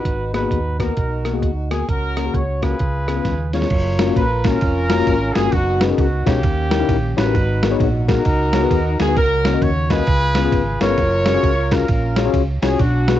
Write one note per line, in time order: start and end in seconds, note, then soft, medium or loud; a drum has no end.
0.00 0.33 D#4 medium
0.00 0.33 F#4 medium
0.00 0.33 B4 medium
0.05 0.44 G#1 medium
0.05 0.75 G#2 medium
0.05 kick medium
0.05 closed hi-hat medium
0.34 0.40 A#3 medium
0.34 0.40 B3 medium
0.34 0.79 D#4 medium
0.34 0.40 F#4 medium
0.34 0.79 F#4 medium
0.34 0.40 G#4 medium
0.34 0.77 B4 medium
0.34 cross-stick loud
0.34 closed hi-hat medium
0.42 0.58 A#3 medium
0.42 0.58 B3 medium
0.42 0.58 F#4 medium
0.42 0.58 G#4 medium
0.51 0.90 D#2 medium
0.51 kick medium
0.51 closed hi-hat medium
0.79 0.92 A#3 medium
0.79 0.92 B3 medium
0.79 1.67 D#4 medium
0.79 0.92 F#4 medium
0.79 1.67 F#4 medium
0.79 1.40 A#4 medium
0.79 0.92 B4 medium
0.79 kick medium
0.79 cross-stick medium
0.79 closed hi-hat medium
0.97 1.42 B1 medium
0.97 kick loud
0.97 closed hi-hat medium
1.25 1.31 A#3 medium
1.25 1.32 B3 medium
1.25 1.32 F#4 medium
1.25 1.31 A#4 medium
1.25 cross-stick medium
1.25 closed hi-hat medium
1.33 1.49 A#3 medium
1.33 1.49 B3 medium
1.33 1.49 F#4 medium
1.33 1.49 G#4 medium
1.42 1.81 D2 medium
1.42 kick medium
1.42 closed hi-hat medium
1.71 1.84 A#3 medium
1.71 1.84 B3 medium
1.71 1.84 F#4 medium
1.71 1.87 G#4 medium
1.71 1.84 A#4 medium
1.71 cross-stick loud
1.71 closed hi-hat medium
1.88 2.27 C#2 medium
1.88 2.58 C#3 medium
1.88 2.76 C#4 medium
1.88 2.76 F#4 medium
1.88 2.34 A#4 medium
1.88 kick medium
1.88 closed hi-hat medium
2.17 2.23 A#3 medium
2.17 2.23 C#4 medium
2.17 2.23 F#4 medium
2.17 2.23 A#4 medium
2.17 cross-stick loud
2.17 closed hi-hat medium
2.25 2.41 A#3 medium
2.25 2.41 C#4 medium
2.25 2.41 F#4 medium
2.25 2.41 G#4 medium
2.34 2.73 C#2 medium
2.34 2.62 C#5 medium
2.34 kick medium
2.34 closed hi-hat medium
2.62 2.75 A#3 medium
2.62 2.75 C#4 medium
2.62 3.50 F4 medium
2.62 2.75 F#4 medium
2.62 3.50 G#4 medium
2.62 2.75 A#4 medium
2.62 3.54 B4 medium
2.62 kick medium
2.62 cross-stick medium
2.62 closed hi-hat medium
2.79 3.19 C#2 medium
2.79 3.50 C#3 soft
2.79 kick medium
2.79 closed hi-hat medium
3.08 3.14 B3 medium
3.08 3.14 C#4 medium
3.08 3.14 F4 medium
3.08 3.15 G#4 medium
3.08 cross-stick loud
3.08 closed hi-hat medium
3.17 3.32 B3 medium
3.17 3.32 C#4 medium
3.17 3.32 F4 medium
3.17 3.32 B4 medium
3.25 3.64 D#2 medium
3.25 kick medium
3.25 snare medium
3.25 closed hi-hat medium
3.53 3.66 B3 medium
3.53 3.66 C#4 medium
3.53 3.67 F4 medium
3.53 4.42 F4 medium
3.53 3.67 G#4 medium
3.53 4.41 A#4 medium
3.53 4.13 C#5 medium
3.53 snare medium
3.53 closed hi-hat medium
3.62 snare medium
3.70 4.10 F#1 loud
3.70 kick loud
3.70 crash loud
3.70 ride medium
3.99 4.06 A#3 medium
3.99 4.06 C#4 medium
3.99 4.06 F4 medium
3.99 4.06 F#4 medium
3.99 4.06 A#4 medium
3.99 snare loud
3.99 ride medium
4.07 4.23 A#3 medium
4.07 4.23 C#4 medium
4.07 4.23 F4 medium
4.07 4.23 F#4 medium
4.07 4.23 C#5 medium
4.16 4.55 A#1 medium
4.16 4.43 B4 medium
4.16 kick loud
4.16 ride medium
4.44 4.57 A#3 medium
4.44 4.58 C#4 medium
4.44 5.32 C#4 medium
4.44 4.58 F4 medium
4.44 5.33 F4 medium
4.44 4.58 F#4 medium
4.44 4.58 A#4 medium
4.44 5.36 A#4 loud
4.44 kick loud
4.44 snare loud
4.44 ride medium
4.61 5.01 F1 medium
4.61 kick loud
4.61 ride medium
4.90 4.97 A#3 medium
4.90 4.97 C#4 medium
4.90 4.97 F4 medium
4.90 4.97 F#4 medium
4.90 4.97 A#4 medium
4.90 snare loud
4.90 ride medium
4.99 5.15 A#3 medium
4.99 5.15 C#4 medium
4.99 5.15 F4 medium
4.99 5.15 F#4 medium
4.99 5.15 A#4 medium
5.07 5.31 G#1 medium
5.07 kick loud
5.07 ride medium
5.35 5.51 G1 loud
5.35 5.43 A#3 medium
5.35 5.42 C#4 medium
5.35 5.43 F4 medium
5.35 5.43 F#4 medium
5.35 5.52 G#4 medium
5.35 5.42 A#4 medium
5.35 snare loud
5.35 ride medium
5.45 5.53 A#3 medium
5.45 5.53 C#4 medium
5.45 5.53 F4 medium
5.45 5.53 F#4 medium
5.45 5.53 A#4 medium
5.52 5.92 F#1 loud
5.52 6.40 B3 medium
5.52 6.41 D#4 medium
5.52 5.84 F#4 medium
5.52 kick loud
5.52 ride medium
5.81 5.88 C#4 medium
5.81 5.88 D#4 medium
5.81 5.88 F#4 medium
5.81 5.88 G#4 medium
5.81 5.88 B4 medium
5.81 snare loud
5.81 ride medium
5.90 6.05 C#4 medium
5.90 6.05 D#4 medium
5.90 6.05 F#4 medium
5.90 6.06 G#4 medium
5.90 6.05 A#4 medium
5.98 6.22 C#2 medium
5.98 6.24 F#4 medium
5.98 kick medium
5.98 ride medium
6.26 6.44 B1 medium
6.26 7.14 A#3 medium
6.26 6.39 C#4 medium
6.26 7.14 C#4 medium
6.26 6.39 D#4 medium
6.26 6.39 F#4 medium
6.26 7.17 G4 loud
6.26 6.39 G#4 medium
6.26 6.39 C#5 medium
6.26 kick loud
6.26 snare loud
6.26 ride medium
6.43 6.83 D#2 medium
6.43 7.13 D#3 medium
6.43 kick loud
6.43 ride medium
6.71 6.78 C#4 medium
6.71 6.78 D#4 medium
6.71 6.78 E4 medium
6.71 6.78 G4 medium
6.71 6.78 A#4 medium
6.71 snare loud
6.71 ride medium
6.80 6.96 C#4 medium
6.80 6.96 D#4 medium
6.80 6.96 E4 medium
6.80 6.96 G4 medium
6.80 6.96 A#4 medium
6.88 7.13 A#1 medium
6.88 kick loud
6.88 ride medium
7.17 7.32 A1 medium
7.17 7.24 C#4 medium
7.17 7.24 D#4 medium
7.17 8.05 D#4 medium
7.17 7.24 E4 medium
7.17 8.05 F#4 medium
7.17 7.24 G4 medium
7.17 7.77 B4 medium
7.17 7.24 C#5 medium
7.17 snare loud
7.17 ride medium
7.26 7.35 C#4 medium
7.26 7.35 D#4 medium
7.26 7.35 E4 medium
7.26 7.35 G4 medium
7.26 7.35 A#4 medium
7.35 7.73 G#1 loud
7.35 8.05 G#2 medium
7.35 kick loud
7.35 ride medium
7.63 7.69 B3 medium
7.63 7.69 D#4 medium
7.63 7.69 F#4 medium
7.63 7.69 G#4 medium
7.63 7.69 A#4 medium
7.63 snare loud
7.63 ride medium
7.71 7.87 B3 medium
7.71 7.87 D#4 medium
7.71 7.87 F#4 medium
7.71 7.87 G#4 medium
7.71 7.87 C#5 medium
7.80 8.19 A#1 loud
7.80 kick medium
7.80 ride medium
8.08 8.21 B3 medium
8.08 8.21 D#4 medium
8.08 8.96 D#4 medium
8.08 8.21 F#4 medium
8.08 8.96 F#4 medium
8.08 8.21 G#4 medium
8.08 8.21 A#4 medium
8.08 8.96 A#4 loud
8.08 kick medium
8.08 snare loud
8.08 ride medium
8.25 8.65 C#2 medium
8.25 kick loud
8.25 ride medium
8.53 8.60 B3 medium
8.53 8.60 D#4 medium
8.53 8.60 F#4 medium
8.53 8.61 G#4 medium
8.53 8.60 C#5 medium
8.53 snare loud
8.53 ride medium
8.63 8.78 B3 medium
8.63 8.78 D#4 medium
8.63 8.78 F#4 medium
8.63 8.78 G#4 medium
8.63 8.79 B4 medium
8.71 8.95 D#2 medium
8.71 kick medium
8.71 ride medium
8.99 9.14 D2 medium
8.99 9.06 B3 medium
8.99 9.06 D#4 medium
8.99 9.06 F#4 medium
8.99 9.06 G#4 medium
8.99 9.17 G#4 medium
8.99 9.06 A#4 medium
8.99 snare loud
8.99 ride medium
9.08 9.17 B3 medium
9.08 9.17 D#4 medium
9.08 9.17 F#4 medium
9.08 9.17 G#4 medium
9.08 9.17 B4 medium
9.16 9.55 C#2 loud
9.16 9.86 C#3 medium
9.16 10.04 C#4 medium
9.16 10.04 F#4 medium
9.16 9.59 A#4 loud
9.16 kick loud
9.16 ride medium
9.45 9.51 A#3 medium
9.45 9.51 C#4 medium
9.45 9.51 F#4 medium
9.45 9.51 A#4 medium
9.45 9.51 C#5 medium
9.45 snare loud
9.45 ride medium
9.54 9.69 A#3 medium
9.54 9.69 C#4 medium
9.54 9.69 F#4 medium
9.54 9.69 A#4 medium
9.54 9.69 D#5 medium
9.62 10.00 D#2 loud
9.62 9.90 C#5 loud
9.62 kick medium
9.62 ride medium
9.90 10.03 A#3 medium
9.90 10.03 C#4 medium
9.90 10.78 F4 medium
9.90 10.03 F#4 medium
9.90 10.78 G#4 medium
9.90 10.03 A#4 medium
9.90 10.78 B4 loud
9.90 10.03 D#5 medium
9.90 kick medium
9.90 snare loud
9.90 ride medium
10.07 10.46 C#2 medium
10.07 10.77 C#3 medium
10.07 kick loud
10.07 ride medium
10.35 10.42 B3 medium
10.35 10.42 C#4 medium
10.35 10.42 F4 medium
10.35 10.42 G#4 medium
10.35 10.42 B4 medium
10.35 snare loud
10.35 ride medium
10.45 10.60 B3 medium
10.45 10.60 C#4 medium
10.45 10.60 F4 medium
10.45 10.60 G#4 medium
10.45 10.60 B4 medium
10.52 10.76 G#1 loud
10.52 kick loud
10.52 ride medium
10.81 10.96 G1 medium
10.81 10.87 B3 medium
10.81 10.88 C#4 medium
10.81 10.88 F4 medium
10.81 11.68 F4 medium
10.81 10.88 G#4 medium
10.81 11.69 A#4 medium
10.81 10.88 B4 medium
10.81 11.72 C#5 loud
10.81 snare loud
10.81 ride medium
10.90 10.98 B3 medium
10.90 10.98 C#4 medium
10.90 10.98 F4 medium
10.90 10.98 G#4 medium
10.90 10.98 B4 medium
10.98 11.37 F#1 loud
10.98 kick loud
10.98 ride medium
11.26 11.33 C#4 medium
11.26 11.33 F4 medium
11.26 11.33 F#4 medium
11.26 11.33 G#4 medium
11.26 11.33 A#4 medium
11.26 snare loud
11.26 ride medium
11.34 11.50 C#4 medium
11.34 11.50 F4 medium
11.34 11.50 F#4 medium
11.34 11.50 G#4 medium
11.34 11.50 C#5 medium
11.43 11.82 C#2 medium
11.43 kick loud
11.43 ride medium
11.71 11.85 C#4 medium
11.71 12.46 C#4 medium
11.71 11.85 F4 medium
11.71 12.46 F4 medium
11.71 11.85 F#4 medium
11.71 11.85 G#4 medium
11.71 11.85 A#4 medium
11.71 12.32 A#4 medium
11.71 kick loud
11.71 snare loud
11.71 ride medium
11.88 12.28 A#1 medium
11.88 kick loud
11.88 ride medium
12.16 12.23 C#4 medium
12.16 12.23 F4 medium
12.16 12.23 F#4 medium
12.16 12.23 G#4 medium
12.16 12.23 C#5 medium
12.16 snare loud
12.16 ride medium
12.25 12.41 C#4 medium
12.25 12.41 F4 medium
12.25 12.41 F#4 medium
12.25 12.41 G#4 medium
12.25 12.41 C#5 medium
12.33 12.58 C#2 medium
12.33 kick medium
12.33 ride medium
12.62 12.77 C2 medium
12.62 12.69 C#4 medium
12.62 12.69 F4 medium
12.62 12.69 F#4 medium
12.62 12.79 G#4 medium
12.62 12.69 G#4 medium
12.62 12.69 C#5 medium
12.62 snare loud
12.62 ride medium
12.71 12.80 C#4 medium
12.71 12.80 F4 medium
12.71 12.80 F#4 medium
12.71 12.80 G#4 medium
12.71 12.80 C#5 medium
12.79 13.18 B1 loud
12.79 13.20 B2 medium
12.79 13.20 D4 medium
12.79 13.20 F#4 loud
12.79 kick loud
12.79 ride medium
13.08 13.14 B3 medium
13.08 13.15 D4 medium
13.08 13.15 F#4 medium
13.08 13.15 G#4 medium
13.08 13.15 B4 medium
13.08 snare loud
13.08 ride medium
13.16 13.20 D4 medium
13.16 13.20 F#4 medium
13.16 13.20 G#4 medium